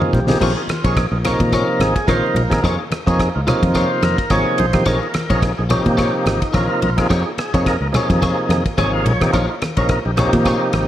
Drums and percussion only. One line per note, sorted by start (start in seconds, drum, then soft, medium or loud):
0.02 mid tom medium
0.13 kick medium
0.13 low conga medium
0.30 snare medium
0.30 high conga medium
0.41 kick medium
0.41 cross-stick medium
0.41 ride medium
0.41 splash medium
0.69 cross-stick medium
0.69 ride medium
0.69 high conga medium
0.84 kick medium
0.84 ride medium
0.97 kick loud
0.97 cross-stick medium
0.97 ride medium
1.25 cross-stick medium
1.25 ride medium
1.25 low conga medium
1.40 kick medium
1.40 ride medium
1.40 high conga medium
1.52 kick medium
1.52 cross-stick medium
1.52 ride medium
1.80 cross-stick medium
1.80 ride medium
1.80 high conga medium
1.96 kick medium
1.96 ride medium
2.08 kick loud
2.08 cross-stick medium
2.08 ride medium
2.08 high conga medium
2.36 ride medium
2.36 low conga medium
2.51 kick medium
2.51 cross-stick medium
2.51 ride medium
2.51 high conga medium
2.64 kick medium
2.64 cross-stick medium
2.64 ride medium
2.92 cross-stick medium
2.92 ride medium
2.92 high conga medium
3.07 kick medium
3.07 ride medium
3.19 kick loud
3.19 cross-stick medium
3.19 ride medium
3.47 cross-stick medium
3.47 ride medium
3.47 low conga medium
3.63 kick medium
3.63 ride medium
3.63 high conga medium
3.75 kick medium
3.75 cross-stick medium
3.75 ride medium
4.03 cross-stick medium
4.03 ride medium
4.03 high conga medium
4.18 kick medium
4.18 ride medium
4.30 kick loud
4.30 cross-stick medium
4.30 ride medium
4.30 high conga medium
4.58 ride medium
4.58 low conga medium
4.73 kick medium
4.73 cross-stick medium
4.73 ride medium
4.73 high conga medium
4.86 kick medium
4.86 cross-stick medium
4.86 ride medium
5.14 cross-stick medium
5.14 ride medium
5.14 high conga medium
5.30 kick medium
5.30 ride medium
5.42 kick loud
5.42 cross-stick medium
5.42 ride medium
5.70 cross-stick medium
5.70 ride medium
5.70 low conga medium
5.86 kick medium
5.86 ride medium
5.86 high conga medium
5.98 kick medium
5.98 cross-stick medium
5.98 ride medium
6.26 cross-stick medium
6.26 ride medium
6.26 high conga medium
6.42 kick medium
6.42 ride medium
6.54 kick loud
6.54 cross-stick medium
6.54 ride medium
6.54 high conga medium
6.82 ride medium
6.82 low conga medium
6.98 kick medium
6.98 cross-stick medium
6.98 ride medium
7.10 kick medium
7.10 cross-stick medium
7.10 ride medium
7.38 cross-stick medium
7.38 ride medium
7.54 kick medium
7.54 ride medium
7.66 kick loud
7.66 cross-stick medium
7.66 ride medium
7.94 cross-stick medium
7.94 ride medium
7.94 low conga medium
8.10 kick medium
8.10 ride medium
8.10 high conga medium
8.22 kick medium
8.22 cross-stick medium
8.22 ride medium
8.22 low conga medium
8.50 cross-stick medium
8.50 ride medium
8.50 high conga medium
8.66 kick medium
8.66 ride medium
8.78 kick loud
8.78 cross-stick medium
8.78 ride medium
8.78 high conga medium
9.06 ride medium
9.06 low conga medium
9.21 kick medium
9.21 cross-stick medium
9.21 ride medium
9.21 high conga medium
9.33 kick medium
9.33 cross-stick medium
9.33 ride medium
9.62 cross-stick medium
9.62 ride medium
9.62 high conga medium
9.77 kick medium
9.77 ride medium
9.89 kick loud
9.89 cross-stick medium
9.89 ride medium
10.17 cross-stick medium
10.17 ride medium
10.17 low conga medium
10.33 kick medium
10.33 ride medium
10.33 high conga medium
10.45 kick medium
10.45 cross-stick medium
10.45 ride medium
10.73 cross-stick medium
10.73 ride medium
10.73 high conga medium